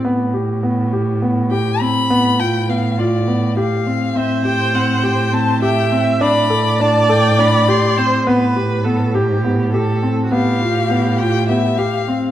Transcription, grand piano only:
X:1
M:7/8
L:1/8
Q:1/4=102
K:Am
V:1 name="Grand piano"
B, G B, G B, G C | B, F B, F B, G C | C G C G C G C | D A D A D G C |
B, G B, G B, G C | B, F B, F B, G C |]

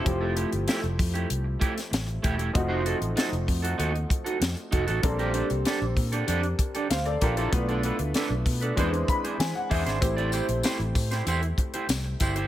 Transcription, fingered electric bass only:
X:1
M:4/4
L:1/16
Q:1/4=96
K:F
V:1 name="Fingered electric bass" clef=bass
F,,,3 G,,, z F,,, F,,2 C,,2 z2 A,,,2 E,,,2 | F,,,3 A,,, z F,,, F,,2 _E,,2 z2 F,, z F,,, A,,, | B,,,3 C,, z B,,, B,,2 F,,2 z2 D,,2 B,,,2 | =B,,,3 D,, z B,,, =B,,2 E,,2 z2 E, z E,, ^G,,, |
A,,,3 B,,, z A,,, A,,2 E,,2 z2 C,,2 G,,,2 |]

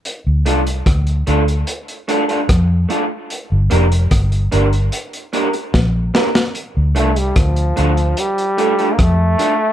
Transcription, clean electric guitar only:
X:1
M:4/4
L:1/16
Q:1/4=74
K:Dm
V:1 name="Clean electric guitar"
z2 [A,DFA] z3 [A,DFA] z3 [A,DFA] [A,DFA] z2 [A,DFA] z | z2 [B,DGB] z3 [B,DGB] z3 [B,DGB] z3 [B,DGB] z | z2 [A,DFA] z3 [A,DFA] z3 [A,DFA] [A,DFA] z2 [A,DFA] z |]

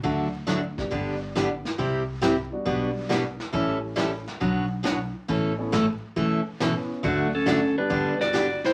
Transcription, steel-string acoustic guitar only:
X:1
M:4/4
L:1/8
Q:"Swing" 1/4=137
K:D
V:1 name="Steel-string acoustic guitar"
[D,F,A,DF] z [D,F,A,DF] z [D,G,B,DG] z [D,G,B,DG] z | [=C,G,=CEG] z [C,G,CEG] z [B,,G,B,DF] z [B,,G,B,DF] z | [E,G,CEA] z [E,G,CEA] z [B,,F,B,DFc] z [B,,F,B,DFc] z | [B,,E,A,CA] z [B,,E,A,CA] z [B,,E,A,CA] z [B,,E,A,CA] z |
[D,F,A,DF] z [D,F,A,DF] z [D,G,B,DG] z [D,G,B,DG] z |]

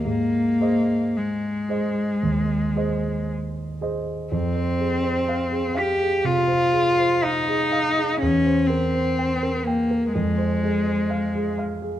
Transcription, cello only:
X:1
M:4/4
L:1/8
Q:1/4=62
K:Ab
V:1 name="Cello"
B,2 A,4 z2 | [K:Fm] C3 G F2 E2 | D C2 B, A,3 z |]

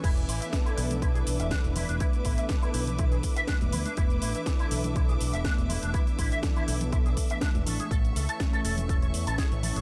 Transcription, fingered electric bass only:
X:1
M:4/4
L:1/16
Q:"Swing 16ths" 1/4=122
K:A
V:1 name="Fingered electric bass" clef=bass
E,,,2 A,,, z3 B,,,4 B,,, E,,, z E,,,2 E,,, | z2 A,,, z3 B,,,4 z3 E,,, D,, z | E,,,2 A,,, z3 B,,,4 B,,, E,,, z E,,,2 E,,, | z2 A,,, z3 B,,,4 z3 E,,, A,,, z |
A,,,2 C,, z3 E,,,4 E,, A,,, z A,,,2 A,,, |]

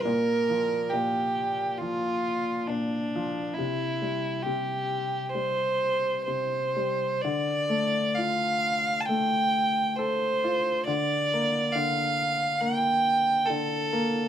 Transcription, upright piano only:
X:1
M:4/4
L:1/8
Q:1/4=68
K:Dm
V:1 name="Upright piano" clef=bass
B,, F, B,,2 F,2 B,, F, | C, G, C,2 G,2 C, G, | D, A, F2 A,2 A F | D, B, D,2 B,2 D, B, |]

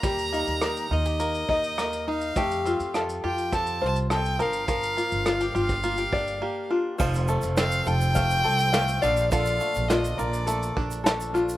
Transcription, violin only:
X:1
M:4/4
L:1/8
Q:1/4=104
K:Fmix
V:1 name="Violin"
b3 e4 f- | f2 z g a a g f- | f3 f4 z | z2 f g4 f |
f2 e d2 z3 |]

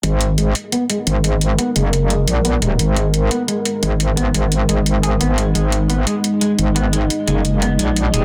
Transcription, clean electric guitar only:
X:1
M:4/4
L:1/8
Q:1/4=174
K:G#m
V:1 name="Clean electric guitar" clef=bass
G, z G, z B, G, z G, | z B, G, z G, z B, G, | z G, z B, G, z G, z | B, G, z G, z G B, G, |
G, z B, G, z G, z B, | G, z G, z B, G, z G, |]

